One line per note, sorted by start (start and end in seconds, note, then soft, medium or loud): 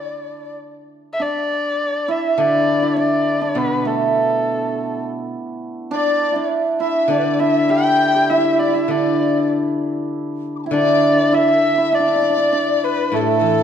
0.00 1.19 D4 medium
0.00 0.50 E4 medium
0.00 0.55 D5 medium
0.00 0.59 D5 medium
1.13 1.24 E5 medium
1.20 2.37 D4 medium
1.20 2.13 D5 medium
2.08 2.82 E4 medium
2.08 2.42 E5 medium
2.38 4.15 D3 medium
2.38 2.96 D4 medium
2.38 2.98 D5 medium
2.82 6.30 E4 medium
2.97 3.41 D4 medium
2.97 3.59 D5 medium
3.41 5.91 D4 medium
3.55 5.32 B2 soft
3.55 7.68 B3 medium
3.55 3.89 B4 medium
3.85 8.29 A3 medium
3.85 5.04 A4 medium
5.91 6.35 D4 medium
5.91 6.47 D5 medium
5.91 6.48 D5 medium
6.32 6.80 E4 soft
6.36 7.10 D4 medium
6.80 7.39 E4 medium
6.80 7.11 E5 medium
6.80 7.08 E5 medium
7.08 8.87 D3 medium
7.08 8.90 D4 medium
7.08 7.20 D5 medium
7.08 7.41 D5 medium
7.18 7.27 B4 medium
7.25 7.44 D5 medium
7.39 8.30 E4 medium
7.39 7.72 E5 medium
7.39 7.73 E5 medium
7.69 8.14 G4 medium
7.69 8.31 G5 loud
7.69 8.33 G5 loud
8.14 11.28 G4 medium
8.30 8.37 E4 medium
8.30 8.61 E5 medium
8.37 8.44 E4 medium
8.44 8.52 E4 medium
8.53 8.60 E4 soft
8.59 8.68 E4 medium
8.59 8.76 D5 medium
8.59 8.82 D5 medium
8.68 8.75 E4 medium
8.74 10.66 E4 medium
8.74 8.92 E5 medium
8.84 8.92 E5 soft
8.88 10.70 D3 soft
8.88 10.73 D4 medium
8.88 9.51 D5 medium
10.56 10.62 B5 soft
10.56 10.58 D6 soft
10.63 11.32 E4 medium
10.63 10.68 G5 soft
10.63 10.65 A5 soft
10.68 12.52 D3 medium
10.68 10.72 E5 soft
10.73 11.92 D4 medium
10.73 11.15 D5 medium
10.73 11.36 D5 medium
11.17 11.35 D5 medium
11.32 11.77 E4 medium
11.32 11.95 E5 medium
11.32 11.96 E5 medium
11.78 13.63 E4 medium
11.92 11.99 D4 medium
11.92 12.86 D5 medium
12.00 12.07 D4 medium
12.08 12.15 D4 soft
12.15 12.21 D4 soft
12.22 12.29 D4 medium
12.30 12.37 D4 medium
12.37 12.52 D4 medium
12.52 13.63 D4 medium
12.84 13.13 B4 medium
12.84 13.17 B4 medium
13.12 13.63 A2 soft
13.12 13.63 A3 medium
13.12 13.22 A4 medium
13.12 13.63 A4 medium
13.21 13.30 G4 medium
13.29 13.63 A4 medium
13.41 13.63 E3 soft